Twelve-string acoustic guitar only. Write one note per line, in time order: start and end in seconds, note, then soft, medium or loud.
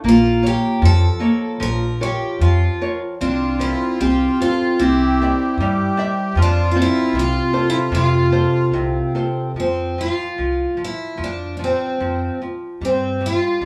0.09 0.47 F4 medium
0.47 0.85 G4 medium
0.85 1.62 A4 medium
1.63 2.02 A#4 loud
2.03 2.41 G4 medium
2.42 2.98 F4 medium
3.21 3.62 D4 medium
3.61 4.00 E4 medium
4.01 4.41 G4 medium
4.42 4.82 F4 medium
4.79 5.93 E4 medium
6.42 6.69 D4 medium
6.71 6.77 F4 medium
6.82 7.18 E4 medium
7.19 7.69 F4 medium
7.70 7.76 E4 medium
7.95 9.12 F4 medium
9.60 10.01 C4 medium
10.01 10.83 F4 medium
10.85 11.24 E4 medium
11.24 11.56 D4 medium
11.57 11.62 D4 soft
11.64 12.39 C4 medium
12.85 13.25 C4 medium
13.26 13.65 F4 medium